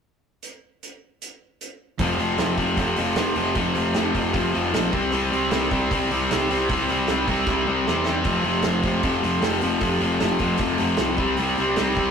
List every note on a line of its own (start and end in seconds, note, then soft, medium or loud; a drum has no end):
0.43 closed hi-hat medium
0.83 closed hi-hat medium
1.22 closed hi-hat medium
1.61 closed hi-hat medium
1.99 2.17 F1 medium
1.99 2.19 F2 medium
1.99 2.18 C3 medium
1.99 2.20 F3 loud
1.99 kick medium
1.99 open hi-hat medium
2.19 2.37 F1 medium
2.19 2.39 F2 medium
2.19 2.39 C3 medium
2.19 2.40 F3 medium
2.19 open hi-hat soft
2.38 2.74 F1 medium
2.38 2.57 F2 medium
2.38 2.58 C3 medium
2.38 2.58 F3 medium
2.38 snare medium
2.38 open hi-hat medium
2.57 2.77 F2 medium
2.57 2.78 C3 medium
2.57 2.79 F3 medium
2.57 kick medium
2.57 open hi-hat soft
2.77 2.95 F1 medium
2.77 2.97 F2 medium
2.77 2.97 C3 loud
2.77 2.98 F3 loud
2.77 kick loud
2.77 open hi-hat medium
2.96 3.15 F1 medium
2.96 3.15 F2 medium
2.96 3.16 C3 medium
2.96 3.16 F3 medium
2.96 open hi-hat medium
3.16 3.35 F1 medium
3.16 3.35 F2 medium
3.16 3.35 C3 medium
3.16 3.36 F3 medium
3.16 snare loud
3.16 open hi-hat medium
3.36 3.54 F1 medium
3.36 3.54 F2 medium
3.36 3.55 C3 medium
3.36 3.55 F3 medium
3.36 open hi-hat soft
3.55 3.74 F1 loud
3.55 3.74 F2 medium
3.55 3.75 C3 loud
3.55 3.75 F3 loud
3.55 kick loud
3.55 open hi-hat medium
3.75 3.94 F1 medium
3.75 3.94 F2 medium
3.75 3.94 C3 medium
3.75 3.95 F3 medium
3.75 open hi-hat soft
3.94 4.13 F1 medium
3.94 4.12 F2 medium
3.94 4.13 C3 medium
3.94 4.13 F3 medium
3.94 snare loud
3.94 open hi-hat medium
4.14 4.32 F1 medium
4.14 4.32 F2 medium
4.14 4.33 C3 medium
4.14 4.33 F3 medium
4.14 kick medium
4.14 open hi-hat soft
4.33 4.52 F1 medium
4.33 4.53 F2 medium
4.33 4.53 C3 loud
4.33 4.53 F3 medium
4.33 kick loud
4.33 open hi-hat medium
4.54 4.72 F1 medium
4.54 4.71 F2 medium
4.54 4.72 C3 medium
4.54 4.73 F3 medium
4.54 open hi-hat soft
4.72 4.91 A#1 medium
4.72 4.91 F2 medium
4.72 4.91 C3 medium
4.72 4.92 F3 loud
4.72 snare loud
4.72 open hi-hat medium
4.92 5.11 C2 medium
4.92 5.12 C3 medium
4.92 5.13 G3 loud
4.92 5.14 C4 loud
4.92 kick loud
4.92 open hi-hat soft
5.12 5.30 C2 loud
5.12 5.31 C3 medium
5.12 5.31 G3 loud
5.12 5.32 C4 medium
5.12 open hi-hat medium
5.32 5.50 C2 medium
5.32 5.51 C3 medium
5.32 5.51 G3 medium
5.32 5.52 C4 medium
5.32 open hi-hat soft
5.51 5.87 C2 medium
5.51 5.71 C3 medium
5.51 5.72 G3 medium
5.51 5.73 C4 medium
5.51 snare loud
5.51 open hi-hat medium
5.71 5.91 C3 medium
5.71 5.91 G3 medium
5.71 5.93 C4 medium
5.71 kick medium
5.71 open hi-hat soft
5.90 6.08 C2 medium
5.90 6.10 C3 medium
5.90 6.11 G3 medium
5.90 6.12 C4 loud
5.90 kick loud
5.90 open hi-hat medium
6.10 6.28 C2 medium
6.10 6.31 C3 medium
6.10 6.32 G3 medium
6.10 6.33 C4 medium
6.10 open hi-hat medium
6.31 6.48 C2 medium
6.31 6.50 C3 medium
6.31 6.50 G3 medium
6.31 6.52 C4 loud
6.31 snare loud
6.31 open hi-hat medium
6.50 6.68 C2 medium
6.50 6.69 C3 medium
6.50 6.69 G3 medium
6.50 6.71 C4 medium
6.50 open hi-hat medium
6.69 6.87 C2 loud
6.69 6.90 C3 medium
6.69 6.90 G3 loud
6.69 6.91 C4 loud
6.69 kick loud
6.69 open hi-hat medium
6.87 7.07 C2 medium
6.87 7.07 C3 medium
6.87 open hi-hat soft
6.91 7.09 C3 medium
6.91 7.09 G3 medium
6.91 7.11 C4 medium
7.08 7.26 C2 medium
7.08 7.28 C3 medium
7.08 7.29 G3 medium
7.08 7.30 C4 medium
7.08 snare loud
7.08 open hi-hat medium
7.28 7.46 C2 medium
7.28 7.48 C3 medium
7.28 7.48 G3 medium
7.28 7.49 C4 medium
7.28 kick medium
7.28 open hi-hat medium
7.47 7.65 C2 medium
7.47 7.66 C3 medium
7.47 7.66 G3 loud
7.47 7.68 C4 medium
7.47 kick loud
7.47 snare medium
7.67 7.86 C2 medium
7.67 7.86 C3 medium
7.67 7.86 G3 medium
7.67 7.88 C4 medium
7.87 8.23 E2 medium
7.87 8.04 C3 medium
7.87 8.05 G3 medium
7.87 8.06 C4 medium
7.87 snare medium
8.06 8.24 C3 medium
8.06 8.25 G3 medium
8.06 11.19 C4 loud
8.06 snare medium
8.24 8.43 F1 medium
8.24 8.45 F2 medium
8.24 8.44 C3 loud
8.24 8.46 F3 medium
8.24 kick loud
8.24 open hi-hat medium
8.44 8.62 F1 medium
8.44 8.65 F2 medium
8.44 8.64 C3 medium
8.44 8.65 F3 medium
8.44 open hi-hat soft
8.62 9.00 F1 medium
8.62 8.83 F2 medium
8.62 8.84 C3 medium
8.62 8.84 F3 medium
8.62 snare medium
8.62 open hi-hat medium
8.83 9.02 F2 medium
8.83 9.03 C3 medium
8.83 9.03 F3 medium
8.83 kick medium
8.83 open hi-hat soft
9.03 9.21 F1 medium
9.03 9.22 F2 medium
9.03 9.23 C3 medium
9.03 9.24 F3 medium
9.03 kick loud
9.03 open hi-hat medium
9.22 9.41 F1 medium
9.22 9.41 F2 medium
9.22 9.41 C3 medium
9.22 9.42 F3 medium
9.22 open hi-hat medium
9.42 9.60 F1 medium
9.42 9.61 F2 medium
9.42 9.61 C3 medium
9.42 9.62 F3 medium
9.42 snare loud
9.42 open hi-hat medium
9.61 9.80 F1 medium
9.61 9.80 F2 medium
9.61 9.80 C3 medium
9.61 9.81 F3 loud
9.61 open hi-hat medium
9.81 9.99 F1 medium
9.81 10.00 F2 loud
9.81 10.01 C3 medium
9.81 10.01 F3 loud
9.81 kick loud
9.81 open hi-hat medium
10.00 10.19 F1 medium
10.00 10.19 F2 medium
10.00 10.19 C3 medium
10.00 10.20 F3 medium
10.00 open hi-hat soft
10.20 10.39 F1 medium
10.20 10.38 F2 medium
10.20 10.39 C3 medium
10.20 10.39 F3 medium
10.20 snare loud
10.20 open hi-hat medium
10.39 10.58 F1 medium
10.39 10.59 F2 medium
10.39 10.59 C3 medium
10.39 10.59 F3 medium
10.39 kick medium
10.39 open hi-hat medium
10.57 10.78 F1 medium
10.57 10.78 F2 medium
10.57 10.78 C3 loud
10.57 10.78 F3 loud
10.57 kick loud
10.57 open hi-hat medium
10.78 10.97 F1 medium
10.78 10.98 F2 medium
10.78 10.98 C3 medium
10.78 10.99 F3 medium
10.78 open hi-hat medium
10.97 11.17 C2 medium
10.97 11.18 F2 medium
10.97 11.17 C3 medium
10.97 11.18 F3 loud
10.97 snare loud
10.97 open hi-hat medium
11.17 11.37 C2 medium
11.17 11.38 C3 medium
11.17 11.39 G3 loud
11.17 11.39 C4 loud
11.17 kick medium
11.17 open hi-hat soft
11.37 11.57 C2 loud
11.37 11.58 C3 medium
11.37 11.59 G3 medium
11.37 11.59 C4 loud
11.37 open hi-hat medium
11.57 11.76 C2 medium
11.57 11.78 C3 medium
11.57 11.79 G3 medium
11.57 11.79 C4 medium
11.57 open hi-hat soft
11.76 12.11 C2 medium
11.76 11.97 C3 medium
11.76 11.98 G3 medium
11.76 11.99 C4 medium
11.76 snare loud
11.76 open hi-hat medium
11.95 12.11 C3 medium
11.95 12.11 G3 medium
11.95 kick medium
11.95 open hi-hat soft
11.99 12.11 C4 medium